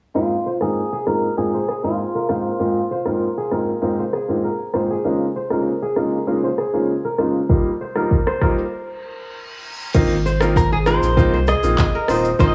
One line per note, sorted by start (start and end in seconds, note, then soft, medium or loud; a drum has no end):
0.15 0.34 G#2 medium
0.15 0.34 A#3 medium
0.15 0.34 C4 medium
0.15 0.34 D#4 medium
0.15 0.35 F4 medium
0.15 0.59 F4 medium
0.46 1.53 C5 medium
0.61 0.80 G#2 medium
0.61 0.80 A#3 medium
0.61 0.80 C4 medium
0.61 0.80 D#4 medium
0.61 0.80 F4 medium
0.61 1.07 G#4 loud
0.61 1.07 A#4 medium
0.61 cross-stick medium
0.93 1.68 G#4 medium
1.06 1.26 G#2 medium
1.06 1.26 A#3 medium
1.06 1.26 C4 medium
1.06 1.26 D#4 medium
1.06 1.26 F4 medium
1.06 2.15 A#4 medium
1.06 1.38 A#4 loud
1.06 cross-stick medium
1.37 1.57 G#2 medium
1.37 1.57 A#3 medium
1.37 1.57 C4 medium
1.37 1.57 D#4 medium
1.37 1.57 F4 loud
1.37 1.84 G#4 loud
1.54 2.29 C5 medium
1.68 3.05 G#4 medium
1.68 cross-stick medium
1.83 2.02 G#2 medium
1.83 2.02 A#3 medium
1.83 2.02 C4 medium
1.83 2.02 D#4 medium
1.83 2.02 F4 medium
1.83 2.26 F4 medium
2.15 3.07 A#4 medium
2.29 2.48 G#2 medium
2.29 2.48 A#3 medium
2.29 2.48 C4 medium
2.29 2.49 D#4 medium
2.29 2.49 F4 medium
2.29 4.09 F4 medium
2.29 2.91 C5 medium
2.29 cross-stick medium
2.59 2.79 G#2 medium
2.59 2.79 A#3 medium
2.59 2.79 C4 medium
2.59 2.79 D#4 medium
2.59 2.79 F4 loud
2.91 3.99 C5 medium
3.06 3.25 G#2 medium
3.06 3.25 A#3 medium
3.06 3.25 C4 medium
3.06 3.25 D#4 medium
3.06 3.25 F4 medium
3.06 3.52 A#4 medium
3.06 cross-stick medium
3.38 4.13 G#4 medium
3.51 3.71 G#2 medium
3.51 3.71 A#3 medium
3.51 3.71 C4 medium
3.51 3.71 D#4 medium
3.51 3.71 F4 medium
3.51 4.44 A#4 medium
3.51 cross-stick medium
3.82 4.01 G#2 medium
3.82 4.01 A#3 medium
3.82 4.01 C4 medium
3.82 4.02 D#4 medium
3.82 4.02 F4 loud
3.99 4.74 C5 medium
4.13 4.90 G#4 medium
4.13 cross-stick medium
4.29 4.47 G#2 medium
4.29 4.47 A#3 medium
4.29 4.47 C4 medium
4.29 4.47 D#4 medium
4.29 4.47 F4 medium
4.44 5.51 A#4 medium
4.74 4.93 G#2 medium
4.74 4.93 A#3 medium
4.74 4.93 C4 medium
4.74 4.94 D#4 medium
4.74 4.94 F4 medium
4.74 5.36 C5 medium
4.74 cross-stick medium
4.91 5.82 G#4 medium
5.04 5.24 C#3 medium
5.04 5.24 G#3 medium
5.04 5.24 A#3 medium
5.04 5.24 D#4 medium
5.04 5.24 F4 loud
5.04 shaker medium
5.36 6.44 C5 medium
5.36 shaker soft
5.50 5.69 C#3 medium
5.50 5.70 G#3 medium
5.50 5.70 A#3 medium
5.50 5.70 D#4 medium
5.50 5.70 F4 medium
5.50 5.97 A#4 medium
5.50 cross-stick medium
5.50 shaker medium
5.67 shaker medium
5.82 6.58 G#4 medium
5.96 6.16 C#3 medium
5.96 6.16 G#3 medium
5.96 6.16 A#3 medium
5.96 6.16 D#4 medium
5.96 6.16 F4 medium
5.96 7.04 A#4 medium
5.96 cross-stick medium
5.96 shaker medium
6.13 shaker medium
6.27 6.46 C#3 medium
6.27 6.46 G#3 medium
6.27 6.46 A#3 medium
6.27 6.47 D#4 medium
6.27 6.47 F4 loud
6.27 shaker medium
6.44 7.19 C5 medium
6.57 7.95 G#4 medium
6.57 cross-stick medium
6.57 shaker soft
6.73 6.92 C#3 medium
6.73 6.92 G#3 medium
6.73 6.92 A#3 medium
6.73 6.92 D#4 medium
6.73 6.92 F4 medium
6.73 shaker medium
6.88 shaker medium
7.05 7.96 A#4 medium
7.18 7.38 C#3 medium
7.18 7.38 G#3 medium
7.18 7.38 A#3 medium
7.18 7.38 D#4 medium
7.18 7.38 F4 medium
7.18 7.80 C5 medium
7.18 cross-stick medium
7.18 shaker medium
7.35 shaker medium
7.49 7.69 G3 medium
7.49 7.69 A#3 medium
7.49 7.69 D#4 medium
7.49 7.69 F4 loud
7.49 kick loud
7.49 shaker medium
7.81 8.27 C5 medium
7.81 shaker soft
7.96 8.14 G3 medium
7.96 8.15 A#3 medium
7.96 8.15 D#4 medium
7.96 8.15 F4 medium
7.96 8.41 A#4 medium
7.96 cross-stick medium
7.96 shaker medium
8.11 kick medium
8.11 shaker medium
8.27 9.46 C5 medium
8.27 cross-stick medium
8.41 8.61 G3 medium
8.41 8.61 A#3 medium
8.41 8.61 D#4 medium
8.41 8.61 F4 medium
8.41 9.69 A#4 medium
8.41 kick loud
8.41 cross-stick medium
8.41 shaker medium
8.58 shaker medium
8.72 reverse cymbal medium
9.94 10.98 G#1 loud
9.94 10.14 A#3 medium
9.94 10.14 C4 medium
9.94 10.14 D#4 medium
9.94 10.14 F4 loud
9.94 kick loud
9.94 crash loud
9.94 impact medium
9.94 shaker medium
10.26 11.33 C5 medium
10.26 shaker medium
10.40 10.59 A#3 medium
10.40 10.59 C4 medium
10.40 10.60 D#4 medium
10.40 10.60 F4 medium
10.40 10.87 A#4 medium
10.40 cross-stick loud
10.40 shaker medium
10.56 10.71 A#4 loud
10.56 kick loud
10.56 shaker medium
10.72 11.48 G#4 medium
10.72 10.78 G#4 medium
10.86 11.06 A#3 medium
10.86 11.06 C4 medium
10.86 11.06 D#4 medium
10.86 11.06 F4 medium
10.86 11.95 A#4 medium
10.86 11.48 C5 loud
10.86 cross-stick medium
10.86 shaker medium
11.02 11.19 A#1 medium
11.02 shaker medium
11.17 11.54 C2 loud
11.17 11.36 A#3 medium
11.17 11.36 C4 medium
11.17 11.36 D#4 medium
11.17 11.36 F4 loud
11.17 kick loud
11.17 shaker medium
11.34 12.09 C5 medium
11.47 12.55 G#4 medium
11.47 12.36 D#5 loud
11.47 cross-stick medium
11.47 shaker soft
11.63 11.75 A#1 medium
11.63 11.82 A#3 medium
11.63 11.82 C4 medium
11.63 11.82 D#4 medium
11.63 11.82 F4 medium
11.63 shaker medium
11.78 kick loud
11.78 clap loud
11.78 shaker medium
11.95 12.55 A#4 medium
12.08 12.33 D#1 loud
12.08 12.28 A#3 medium
12.08 12.28 C4 medium
12.08 12.28 D#4 medium
12.08 12.28 F4 medium
12.08 12.55 C5 medium
12.08 cross-stick medium
12.08 open hi-hat medium
12.08 shaker medium
12.25 shaker medium
12.39 12.55 G#1 loud
12.39 12.55 A#3 medium
12.39 12.55 C4 medium
12.39 12.55 D#4 medium
12.39 12.55 F4 loud
12.39 12.47 C5 loud
12.39 kick loud
12.39 shaker medium
12.48 12.54 D#5 medium